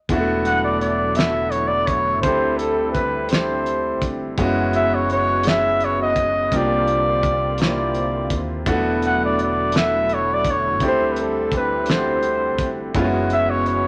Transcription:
0.09 E1 D3 F#3 G#3 A3 B3 D4 E4 F#4, kick, closed hi-hat
0.16 A3
0.45 F#5, closed hi-hat
0.64 D5
0.81 D5, closed hi-hat
1.15 A3 B3 D4 E4 E5, snare, closed hi-hat
1.19 F#4
1.51 C#5, closed hi-hat
1.67 D5
1.86 C#5, kick, closed hi-hat
2.21 D2 G3 A3 C4 D4 C5, kick, closed hi-hat
2.26 E4 G4
2.58 A4, closed hi-hat
2.92 B4, kick, closed hi-hat
3.29 A3 C4 D4 E4 C5, snare, closed hi-hat
3.33 G4
3.66 closed hi-hat
4.02 F1, kick, closed hi-hat
4.36 F#1 E3 G#3 B3 C#4 E4 F#4, kick, closed hi-hat
4.41 F#4
4.73 E5, closed hi-hat
4.94 C#5
5.10 C#5, closed hi-hat
5.43 G#3 B3 C#4 E4 G#4, snare, closed hi-hat
5.48 E5
5.80 closed hi-hat
5.85 C#5
6.02 D#5
6.16 kick, closed hi-hat
6.52 C2 D3 A#3 C4 D4 F4 G4, kick, closed hi-hat
6.56 D5
6.88 closed hi-hat
7.23 kick, closed hi-hat
7.58 A#3 C4 D4 E4 D5, snare, closed hi-hat
7.62 G4
7.68 F4
7.95 closed hi-hat
8.30 D#2, kick, closed hi-hat
8.66 E1 F#3 A3 B3 D4 E4 F#4, kick, closed hi-hat
9.02 F#5, closed hi-hat
9.24 D5
9.39 D5, closed hi-hat
9.72 A3 B3 D4 E4, snare, closed hi-hat
9.76 F#4 E5
10.09 closed hi-hat
10.14 C#5
10.34 D5
10.45 kick, closed hi-hat
10.50 C#5
10.80 D2 G3 A3 C4 D4 E4 G4, kick, closed hi-hat
10.87 C5
11.12 B4
11.16 closed hi-hat
11.22 A4
11.52 kick, closed hi-hat
11.56 B4
11.86 A3 C4 D4, snare, closed hi-hat
11.90 E4 F#4 C5
11.97 G4
12.23 closed hi-hat
12.58 F1, kick, closed hi-hat
12.95 F#1 E3 G#3 B3 C#4 E4 F4 F#4, kick, closed hi-hat
13.04 F#4
13.30 E5, closed hi-hat
13.50 C#5
13.66 C#5, closed hi-hat

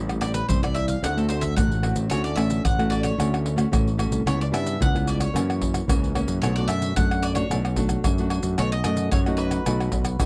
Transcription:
Already playing: A1 A2 G3 C4 E4
0.09 pandeiro, tamborim, maracas
0.21 G3 C4 E4 D5, pandeiro, tamborim, surdo
0.34 B4, pandeiro, maracas
0.49 C2 E3 G3 C4 E4 C5, pandeiro, maracas, surdo
0.63 G3 C4 E4 D5, pandeiro, tamborim, maracas
0.75 E5, pandeiro
0.88 F5, pandeiro, maracas, surdo
1.02 D2 D3 A3 C4 F#4 F#5, pandeiro, tamborim, maracas, surdo
1.17 A3 C4 F#4 A4, pandeiro, maracas
1.29 C5, pandeiro, maracas
1.41 E5, pandeiro, maracas, surdo
1.56 A1 A2 A3 C4 F#4 F#5, pandeiro, tamborim, maracas, surdo
1.72 pandeiro, maracas, surdo
1.82 A3 C4 F#4, pandeiro, tamborim, surdo
1.96 A1, pandeiro, maracas
2.10 D2 D3 A3 C#4 F#4 C#5, pandeiro, tamborim, low agogo, maracas, surdo
2.24 D5, pandeiro, maracas
2.36 A1 A3 C#4 F#4 E5, pandeiro, tamborim, low agogo
2.50 pandeiro, maracas
2.64 A1 A2 F#5, pandeiro, tamborim, maracas, surdo
2.79 A3 C#4 F#4, pandeiro, tamborim, maracas
2.90 D5, pandeiro, high agogo
3.03 C#5, pandeiro, tamborim, maracas
3.18 D2 D3 A3 C#4 F#4, pandeiro, tamborim, low agogo, maracas, surdo
3.34 pandeiro, tamborim, maracas
3.46 pandeiro
3.56 A3 C#4 F#4, pandeiro, tamborim, maracas
3.71 A1 A2 A3 C#4 F#4, pandeiro, tamborim, high agogo, maracas, surdo
3.88 pandeiro, maracas
3.98 A3 C#4 F#4, pandeiro, tamborim, high agogo, maracas
4.11 C2, pandeiro, maracas
4.26 C#2 C#3 G3 B3 E4 C#5, pandeiro, tamborim, low agogo, maracas, surdo
4.41 D5, pandeiro, maracas
4.51 G2 G3 B3 E4 E5, pandeiro, tamborim, low agogo, maracas
4.67 pandeiro, maracas
4.80 C#2 C#3 G3 B3 E4 F#5, pandeiro, tamborim, maracas, surdo
4.94 G3 B3 E4, pandeiro, tamborim, maracas
5.08 D5, pandeiro, high agogo, maracas
5.20 C#5, pandeiro, tamborim, maracas
5.34 F#2 E3 A#3 C#4, pandeiro, tamborim, low agogo, maracas, surdo
5.50 pandeiro, tamborim, maracas
5.62 pandeiro, surdo
5.74 pandeiro, tamborim, maracas
5.88 C#2 C#3 E3 A#3 C#4, pandeiro, tamborim, high agogo, maracas, surdo
6.04 pandeiro, maracas
6.15 E3 A#3 C#4, pandeiro, tamborim, high agogo
6.27 F#2, pandeiro, maracas
6.42 B1 B2 A3 D4 F#4 C#5, pandeiro, tamborim, low agogo, maracas, surdo
6.56 A3 D4 F#4 D5, pandeiro, maracas
6.68 F#2 E5, pandeiro, tamborim, low agogo, maracas
6.82 pandeiro, maracas
6.96 F#2 A3 D4 F#4 F#5, pandeiro, tamborim, maracas, surdo
7.11 pandeiro, tamborim, maracas
7.23 D5, pandeiro, high agogo, maracas
7.35 A3 D4 F#4 C#5, pandeiro, tamborim, maracas
7.50 B1 B2 A3 D4 F#4, pandeiro, tamborim, low agogo, maracas, surdo
7.65 pandeiro, tamborim, maracas
7.76 A3 D4 F#4, pandeiro, maracas, surdo
7.89 pandeiro, tamborim, maracas
8.04 F#2, pandeiro, tamborim, high agogo, maracas, surdo
8.18 A3 D4 F#4, pandeiro, maracas
8.30 pandeiro, tamborim, high agogo
8.43 F#2, pandeiro, maracas
8.58 B1 B2 A3 D#4 F#4 C#5, pandeiro, tamborim, low agogo, maracas, surdo
8.72 D#5, pandeiro, maracas
8.84 F#2 A3 D#4 F#4 D#5, pandeiro, tamborim, low agogo, maracas
8.97 pandeiro, maracas
9.11 F#2 C#5, pandeiro, tamborim, maracas, surdo
9.26 A3 D#4 F#4, pandeiro, tamborim, maracas
9.37 B4, pandeiro, high agogo
9.51 pandeiro, tamborim, maracas
9.66 B1 B2 A3 D#4 F#4, pandeiro, tamborim, low agogo, maracas, surdo
9.80 pandeiro, tamborim, maracas
9.92 B1, pandeiro, maracas, surdo
10.05 pandeiro, tamborim, maracas
10.20 C#2 F#2 A3 D#4 F#4, pandeiro, tamborim, high agogo, maracas, surdo

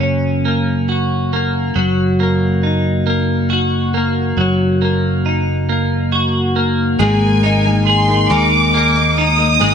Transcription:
Already playing: F#1 F#2 A#3 F#4
0.00 C#4
0.45 A#3
0.89 F#4
1.33 A#3
1.76 F#1 F#3
2.20 A#3
2.63 D#4
3.07 A#3
3.50 F#4
3.94 A#3
4.37 F#1 F#3
4.82 A#3
5.26 D#4
5.69 A#3
6.12 F#4
6.56 A#3
6.99 G#1 G#3 A#3 D#4 A#4 G#5
7.43 G#3 A#3 D#4 A#4
7.65 A#3 D#4 A#4
7.87 G#4 C6
8.08 A#3 D#4 A#4
8.29 D#2 G#3 A#3 D#4 A#4 D6
8.73 G#3 A#3 D#4 A#4
8.95 A#3 D#4 A#4
9.18 D#4 D#6
9.38 A#3 D#4 A#4
9.59 G#1 G#3 A#3 D#4 A#4

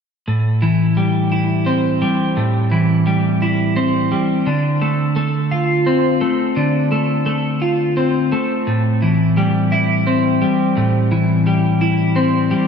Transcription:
0.28 A2
0.62 E3
0.97 G3
1.32 E4
1.66 C4
2.02 G3
2.37 A2
2.72 E3
3.07 G3
3.42 E4
3.76 C4
4.12 G3
4.46 D3
4.82 A3
5.16 A3
5.51 F4
5.87 C4
6.21 A3
6.57 D3
6.92 A3
7.26 A3
7.62 F4
7.97 C4
8.32 A3
8.67 A2
9.02 E3
9.37 G3
9.72 E4
10.07 C4
10.42 G3
10.77 A2
11.12 E3
11.47 G3
11.81 E4
12.16 C4
12.51 G3

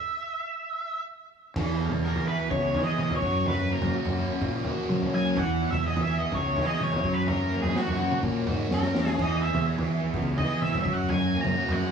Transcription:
Already playing: E5
1.56 E2 B2 E3, kick, floor tom, crash
1.80 B3
1.92 E2, floor tom, mid tom
2.05 G#4 A#4
2.16 E3, floor tom
2.21 E3
2.28 E4 B4
2.50 C#2 B3 C#5, kick, floor tom
2.74 E3 G#4, floor tom
2.82 E3 D#5
2.98 E4, mid tom
3.10 E2, floor tom
3.16 C#5
3.22 F#2 F#3, kick
3.43 E2, floor tom
3.47 F#3 B4
3.71 A#3 A#4
3.82 F#2, floor tom, mid tom
3.95 F#4
4.03 F#2 B2, floor tom
4.19 C#4
4.41 A#2 A#3, kick, floor tom
4.65 E3 F#4, floor tom
4.89 F#3 C#4, mid tom
5.01 floor tom
5.14 F#3 A#3 G#5
5.32 E3
5.37 E2 E3 F#5, kick, floor tom
5.62 B3
5.70 E2 E5, floor tom, mid tom
5.86 G#4 D#5
5.95 E2 E3, floor tom
6.02 E5
6.10 E4
6.18 D#5
6.32 C#2 B3 C#5, kick, floor tom
6.56 B2 E3 G#4, floor tom
6.67 D#5
6.80 E4 C#5, mid tom
6.92 F2, floor tom
7.04 F#2 F#3, kick
7.13 B4
7.19 E3
7.28 F#3 A#4, floor tom
7.51 A#3
7.62 F#2 G#4, floor tom
7.76 F#4, snare
7.83 E3
7.88 F#2, floor tom
8.00 C#4
8.11 mid tom
8.23 A#2 A#3, kick, floor tom
8.45 E2 G#2 F#4, floor tom
8.70 F#2 C#4 A#4, snare
8.82 snare
8.94 E2 A#3, snare
9.06 B2, snare
9.19 E2 E3 D#5, kick, floor tom, crash
9.42 B3 E5
9.54 E2, floor tom, mid tom
9.68 E3 G#4
9.78 E3, floor tom
9.90 E4
10.14 C#2 B3, kick, floor tom
10.33 E3
10.38 E3 G#4 D#5, floor tom
10.61 E4 E5, mid tom
10.73 C#2, floor tom
10.85 F#2 F#3, kick
10.93 E2 F#5
11.09 F#3 G#5, floor tom
11.35 A#3
11.41 A#5, floor tom, mid tom
11.46 F#2
11.56 B2 F#4
11.69 F#2 F#5, floor tom
11.81 C#4

